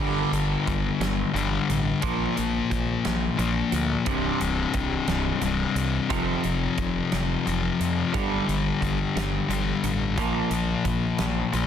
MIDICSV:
0, 0, Header, 1, 5, 480
1, 0, Start_track
1, 0, Tempo, 679502
1, 1431, Time_signature, 6, 3, 24, 8
1, 8241, End_track
2, 0, Start_track
2, 0, Title_t, "Distorted electric guitar"
2, 0, Program_c, 0, 30
2, 969, Note_on_c, 0, 55, 66
2, 1426, Note_off_c, 0, 55, 0
2, 2405, Note_on_c, 0, 58, 71
2, 2864, Note_off_c, 0, 58, 0
2, 3850, Note_on_c, 0, 48, 70
2, 4306, Note_off_c, 0, 48, 0
2, 5288, Note_on_c, 0, 53, 70
2, 5744, Note_off_c, 0, 53, 0
2, 5780, Note_on_c, 0, 55, 85
2, 6709, Note_off_c, 0, 55, 0
2, 6726, Note_on_c, 0, 55, 74
2, 7182, Note_off_c, 0, 55, 0
2, 8163, Note_on_c, 0, 58, 68
2, 8241, Note_off_c, 0, 58, 0
2, 8241, End_track
3, 0, Start_track
3, 0, Title_t, "Clean electric guitar"
3, 0, Program_c, 1, 27
3, 0, Note_on_c, 1, 43, 59
3, 0, Note_on_c, 1, 50, 76
3, 0, Note_on_c, 1, 55, 81
3, 211, Note_off_c, 1, 43, 0
3, 215, Note_off_c, 1, 50, 0
3, 216, Note_off_c, 1, 55, 0
3, 231, Note_on_c, 1, 43, 52
3, 235, Note_on_c, 1, 50, 62
3, 447, Note_off_c, 1, 43, 0
3, 448, Note_off_c, 1, 50, 0
3, 472, Note_on_c, 1, 43, 61
3, 474, Note_on_c, 1, 50, 62
3, 687, Note_off_c, 1, 43, 0
3, 689, Note_off_c, 1, 50, 0
3, 710, Note_on_c, 1, 43, 53
3, 712, Note_on_c, 1, 50, 59
3, 926, Note_off_c, 1, 43, 0
3, 927, Note_off_c, 1, 50, 0
3, 951, Note_on_c, 1, 43, 56
3, 956, Note_on_c, 1, 50, 63
3, 1167, Note_off_c, 1, 43, 0
3, 1170, Note_off_c, 1, 50, 0
3, 1195, Note_on_c, 1, 43, 60
3, 1199, Note_on_c, 1, 50, 63
3, 1409, Note_off_c, 1, 43, 0
3, 1411, Note_off_c, 1, 50, 0
3, 1429, Note_on_c, 1, 46, 63
3, 1431, Note_on_c, 1, 53, 79
3, 1437, Note_on_c, 1, 58, 71
3, 1656, Note_off_c, 1, 46, 0
3, 1657, Note_off_c, 1, 53, 0
3, 1660, Note_off_c, 1, 58, 0
3, 1669, Note_on_c, 1, 53, 63
3, 1671, Note_on_c, 1, 46, 51
3, 1886, Note_off_c, 1, 53, 0
3, 1887, Note_off_c, 1, 46, 0
3, 1908, Note_on_c, 1, 46, 61
3, 1910, Note_on_c, 1, 53, 67
3, 2126, Note_off_c, 1, 46, 0
3, 2127, Note_off_c, 1, 53, 0
3, 2150, Note_on_c, 1, 46, 57
3, 2154, Note_on_c, 1, 53, 59
3, 2367, Note_off_c, 1, 46, 0
3, 2369, Note_off_c, 1, 53, 0
3, 2389, Note_on_c, 1, 46, 52
3, 2391, Note_on_c, 1, 53, 54
3, 2606, Note_off_c, 1, 46, 0
3, 2607, Note_off_c, 1, 53, 0
3, 2628, Note_on_c, 1, 46, 53
3, 2630, Note_on_c, 1, 53, 63
3, 2846, Note_off_c, 1, 46, 0
3, 2847, Note_off_c, 1, 53, 0
3, 2863, Note_on_c, 1, 36, 71
3, 2871, Note_on_c, 1, 43, 76
3, 2876, Note_on_c, 1, 48, 79
3, 3093, Note_off_c, 1, 36, 0
3, 3097, Note_off_c, 1, 43, 0
3, 3099, Note_off_c, 1, 48, 0
3, 3111, Note_on_c, 1, 36, 53
3, 3118, Note_on_c, 1, 43, 66
3, 3327, Note_off_c, 1, 36, 0
3, 3330, Note_off_c, 1, 43, 0
3, 3349, Note_on_c, 1, 36, 60
3, 3350, Note_on_c, 1, 43, 60
3, 3566, Note_off_c, 1, 36, 0
3, 3566, Note_off_c, 1, 43, 0
3, 3594, Note_on_c, 1, 36, 50
3, 3597, Note_on_c, 1, 43, 54
3, 3808, Note_off_c, 1, 36, 0
3, 3810, Note_off_c, 1, 43, 0
3, 3822, Note_on_c, 1, 36, 55
3, 3824, Note_on_c, 1, 43, 59
3, 4042, Note_off_c, 1, 36, 0
3, 4044, Note_off_c, 1, 43, 0
3, 4068, Note_on_c, 1, 36, 56
3, 4070, Note_on_c, 1, 43, 57
3, 4285, Note_off_c, 1, 36, 0
3, 4286, Note_off_c, 1, 43, 0
3, 4301, Note_on_c, 1, 41, 71
3, 4306, Note_on_c, 1, 48, 82
3, 4310, Note_on_c, 1, 53, 73
3, 4531, Note_off_c, 1, 41, 0
3, 4534, Note_off_c, 1, 48, 0
3, 4536, Note_off_c, 1, 53, 0
3, 4556, Note_on_c, 1, 48, 63
3, 4769, Note_off_c, 1, 48, 0
3, 4788, Note_on_c, 1, 41, 60
3, 4791, Note_on_c, 1, 48, 62
3, 5005, Note_off_c, 1, 41, 0
3, 5007, Note_off_c, 1, 48, 0
3, 5033, Note_on_c, 1, 41, 50
3, 5035, Note_on_c, 1, 48, 56
3, 5248, Note_off_c, 1, 41, 0
3, 5248, Note_off_c, 1, 48, 0
3, 5275, Note_on_c, 1, 41, 50
3, 5278, Note_on_c, 1, 48, 64
3, 5488, Note_off_c, 1, 41, 0
3, 5490, Note_off_c, 1, 48, 0
3, 5507, Note_on_c, 1, 41, 54
3, 5509, Note_on_c, 1, 48, 54
3, 5724, Note_off_c, 1, 41, 0
3, 5725, Note_off_c, 1, 48, 0
3, 5740, Note_on_c, 1, 43, 71
3, 5749, Note_on_c, 1, 50, 68
3, 5751, Note_on_c, 1, 55, 77
3, 5970, Note_off_c, 1, 43, 0
3, 5973, Note_off_c, 1, 50, 0
3, 5975, Note_off_c, 1, 55, 0
3, 5981, Note_on_c, 1, 50, 54
3, 5982, Note_on_c, 1, 43, 55
3, 6201, Note_off_c, 1, 43, 0
3, 6201, Note_off_c, 1, 50, 0
3, 6220, Note_on_c, 1, 43, 58
3, 6224, Note_on_c, 1, 50, 72
3, 6440, Note_off_c, 1, 43, 0
3, 6442, Note_off_c, 1, 50, 0
3, 6463, Note_on_c, 1, 43, 53
3, 6469, Note_on_c, 1, 50, 60
3, 6681, Note_off_c, 1, 43, 0
3, 6684, Note_off_c, 1, 50, 0
3, 6707, Note_on_c, 1, 43, 51
3, 6713, Note_on_c, 1, 50, 60
3, 6923, Note_off_c, 1, 43, 0
3, 6926, Note_off_c, 1, 50, 0
3, 6951, Note_on_c, 1, 43, 54
3, 6951, Note_on_c, 1, 50, 53
3, 7165, Note_off_c, 1, 43, 0
3, 7165, Note_off_c, 1, 50, 0
3, 7187, Note_on_c, 1, 46, 70
3, 7189, Note_on_c, 1, 53, 78
3, 7196, Note_on_c, 1, 58, 70
3, 7412, Note_off_c, 1, 46, 0
3, 7414, Note_off_c, 1, 53, 0
3, 7417, Note_off_c, 1, 58, 0
3, 7425, Note_on_c, 1, 46, 56
3, 7430, Note_on_c, 1, 53, 60
3, 7641, Note_off_c, 1, 46, 0
3, 7644, Note_off_c, 1, 53, 0
3, 7659, Note_on_c, 1, 46, 62
3, 7663, Note_on_c, 1, 53, 60
3, 7878, Note_off_c, 1, 46, 0
3, 7880, Note_off_c, 1, 53, 0
3, 7899, Note_on_c, 1, 46, 50
3, 7900, Note_on_c, 1, 53, 63
3, 8118, Note_off_c, 1, 46, 0
3, 8119, Note_off_c, 1, 53, 0
3, 8144, Note_on_c, 1, 46, 52
3, 8145, Note_on_c, 1, 53, 62
3, 8241, Note_off_c, 1, 46, 0
3, 8241, Note_off_c, 1, 53, 0
3, 8241, End_track
4, 0, Start_track
4, 0, Title_t, "Fingered electric bass"
4, 0, Program_c, 2, 33
4, 0, Note_on_c, 2, 31, 66
4, 153, Note_off_c, 2, 31, 0
4, 224, Note_on_c, 2, 31, 74
4, 385, Note_off_c, 2, 31, 0
4, 478, Note_on_c, 2, 31, 77
4, 634, Note_off_c, 2, 31, 0
4, 704, Note_on_c, 2, 31, 79
4, 865, Note_off_c, 2, 31, 0
4, 946, Note_on_c, 2, 31, 74
4, 1106, Note_off_c, 2, 31, 0
4, 1197, Note_on_c, 2, 33, 66
4, 1353, Note_off_c, 2, 33, 0
4, 1431, Note_on_c, 2, 34, 69
4, 1590, Note_off_c, 2, 34, 0
4, 1681, Note_on_c, 2, 34, 73
4, 1836, Note_off_c, 2, 34, 0
4, 1919, Note_on_c, 2, 34, 77
4, 2075, Note_off_c, 2, 34, 0
4, 2161, Note_on_c, 2, 34, 76
4, 2316, Note_off_c, 2, 34, 0
4, 2390, Note_on_c, 2, 34, 72
4, 2549, Note_off_c, 2, 34, 0
4, 2629, Note_on_c, 2, 38, 74
4, 2788, Note_off_c, 2, 38, 0
4, 2874, Note_on_c, 2, 24, 66
4, 3031, Note_off_c, 2, 24, 0
4, 3117, Note_on_c, 2, 24, 77
4, 3274, Note_off_c, 2, 24, 0
4, 3353, Note_on_c, 2, 24, 77
4, 3511, Note_off_c, 2, 24, 0
4, 3580, Note_on_c, 2, 24, 75
4, 3742, Note_off_c, 2, 24, 0
4, 3824, Note_on_c, 2, 24, 74
4, 3985, Note_off_c, 2, 24, 0
4, 4063, Note_on_c, 2, 36, 68
4, 4224, Note_off_c, 2, 36, 0
4, 4313, Note_on_c, 2, 29, 72
4, 4471, Note_off_c, 2, 29, 0
4, 4550, Note_on_c, 2, 29, 79
4, 4709, Note_off_c, 2, 29, 0
4, 4786, Note_on_c, 2, 29, 70
4, 4946, Note_off_c, 2, 29, 0
4, 5033, Note_on_c, 2, 29, 72
4, 5190, Note_off_c, 2, 29, 0
4, 5275, Note_on_c, 2, 29, 66
4, 5431, Note_off_c, 2, 29, 0
4, 5512, Note_on_c, 2, 41, 69
4, 5669, Note_off_c, 2, 41, 0
4, 5758, Note_on_c, 2, 31, 71
4, 5913, Note_off_c, 2, 31, 0
4, 5992, Note_on_c, 2, 31, 71
4, 6149, Note_off_c, 2, 31, 0
4, 6233, Note_on_c, 2, 31, 69
4, 6389, Note_off_c, 2, 31, 0
4, 6471, Note_on_c, 2, 31, 76
4, 6628, Note_off_c, 2, 31, 0
4, 6700, Note_on_c, 2, 31, 74
4, 6861, Note_off_c, 2, 31, 0
4, 6946, Note_on_c, 2, 33, 75
4, 7193, Note_off_c, 2, 33, 0
4, 7193, Note_on_c, 2, 34, 65
4, 7349, Note_off_c, 2, 34, 0
4, 7421, Note_on_c, 2, 34, 80
4, 7581, Note_off_c, 2, 34, 0
4, 7667, Note_on_c, 2, 34, 73
4, 7825, Note_off_c, 2, 34, 0
4, 7908, Note_on_c, 2, 34, 75
4, 8065, Note_off_c, 2, 34, 0
4, 8147, Note_on_c, 2, 34, 77
4, 8241, Note_off_c, 2, 34, 0
4, 8241, End_track
5, 0, Start_track
5, 0, Title_t, "Drums"
5, 235, Note_on_c, 9, 42, 50
5, 306, Note_off_c, 9, 42, 0
5, 477, Note_on_c, 9, 36, 66
5, 477, Note_on_c, 9, 42, 44
5, 548, Note_off_c, 9, 36, 0
5, 548, Note_off_c, 9, 42, 0
5, 715, Note_on_c, 9, 42, 69
5, 717, Note_on_c, 9, 38, 92
5, 786, Note_off_c, 9, 42, 0
5, 788, Note_off_c, 9, 38, 0
5, 963, Note_on_c, 9, 42, 46
5, 1033, Note_off_c, 9, 42, 0
5, 1199, Note_on_c, 9, 42, 46
5, 1270, Note_off_c, 9, 42, 0
5, 1429, Note_on_c, 9, 42, 70
5, 1435, Note_on_c, 9, 36, 96
5, 1499, Note_off_c, 9, 42, 0
5, 1506, Note_off_c, 9, 36, 0
5, 1676, Note_on_c, 9, 42, 51
5, 1746, Note_off_c, 9, 42, 0
5, 1917, Note_on_c, 9, 36, 61
5, 1917, Note_on_c, 9, 42, 52
5, 1988, Note_off_c, 9, 36, 0
5, 1988, Note_off_c, 9, 42, 0
5, 2154, Note_on_c, 9, 42, 67
5, 2156, Note_on_c, 9, 38, 92
5, 2225, Note_off_c, 9, 42, 0
5, 2227, Note_off_c, 9, 38, 0
5, 2395, Note_on_c, 9, 42, 51
5, 2465, Note_off_c, 9, 42, 0
5, 2630, Note_on_c, 9, 42, 52
5, 2701, Note_off_c, 9, 42, 0
5, 2869, Note_on_c, 9, 42, 83
5, 2873, Note_on_c, 9, 36, 95
5, 2940, Note_off_c, 9, 42, 0
5, 2944, Note_off_c, 9, 36, 0
5, 3113, Note_on_c, 9, 42, 52
5, 3184, Note_off_c, 9, 42, 0
5, 3346, Note_on_c, 9, 42, 54
5, 3352, Note_on_c, 9, 36, 64
5, 3416, Note_off_c, 9, 42, 0
5, 3423, Note_off_c, 9, 36, 0
5, 3587, Note_on_c, 9, 42, 70
5, 3589, Note_on_c, 9, 38, 94
5, 3657, Note_off_c, 9, 42, 0
5, 3659, Note_off_c, 9, 38, 0
5, 3826, Note_on_c, 9, 42, 53
5, 3897, Note_off_c, 9, 42, 0
5, 4070, Note_on_c, 9, 42, 49
5, 4141, Note_off_c, 9, 42, 0
5, 4310, Note_on_c, 9, 42, 71
5, 4312, Note_on_c, 9, 36, 96
5, 4381, Note_off_c, 9, 42, 0
5, 4383, Note_off_c, 9, 36, 0
5, 4547, Note_on_c, 9, 42, 49
5, 4618, Note_off_c, 9, 42, 0
5, 4788, Note_on_c, 9, 42, 47
5, 4791, Note_on_c, 9, 36, 69
5, 4858, Note_off_c, 9, 42, 0
5, 4861, Note_off_c, 9, 36, 0
5, 5030, Note_on_c, 9, 42, 63
5, 5032, Note_on_c, 9, 38, 96
5, 5100, Note_off_c, 9, 42, 0
5, 5102, Note_off_c, 9, 38, 0
5, 5277, Note_on_c, 9, 42, 45
5, 5348, Note_off_c, 9, 42, 0
5, 5516, Note_on_c, 9, 42, 52
5, 5586, Note_off_c, 9, 42, 0
5, 5752, Note_on_c, 9, 36, 94
5, 5752, Note_on_c, 9, 42, 69
5, 5822, Note_off_c, 9, 42, 0
5, 5823, Note_off_c, 9, 36, 0
5, 5997, Note_on_c, 9, 42, 48
5, 6068, Note_off_c, 9, 42, 0
5, 6232, Note_on_c, 9, 36, 66
5, 6238, Note_on_c, 9, 42, 46
5, 6302, Note_off_c, 9, 36, 0
5, 6309, Note_off_c, 9, 42, 0
5, 6477, Note_on_c, 9, 42, 70
5, 6479, Note_on_c, 9, 38, 98
5, 6547, Note_off_c, 9, 42, 0
5, 6549, Note_off_c, 9, 38, 0
5, 6715, Note_on_c, 9, 42, 52
5, 6786, Note_off_c, 9, 42, 0
5, 6949, Note_on_c, 9, 42, 51
5, 7020, Note_off_c, 9, 42, 0
5, 7189, Note_on_c, 9, 36, 98
5, 7190, Note_on_c, 9, 42, 82
5, 7259, Note_off_c, 9, 36, 0
5, 7261, Note_off_c, 9, 42, 0
5, 7423, Note_on_c, 9, 42, 53
5, 7494, Note_off_c, 9, 42, 0
5, 7665, Note_on_c, 9, 36, 65
5, 7665, Note_on_c, 9, 42, 53
5, 7735, Note_off_c, 9, 42, 0
5, 7736, Note_off_c, 9, 36, 0
5, 7902, Note_on_c, 9, 42, 72
5, 7904, Note_on_c, 9, 38, 90
5, 7972, Note_off_c, 9, 42, 0
5, 7975, Note_off_c, 9, 38, 0
5, 8148, Note_on_c, 9, 42, 52
5, 8218, Note_off_c, 9, 42, 0
5, 8241, End_track
0, 0, End_of_file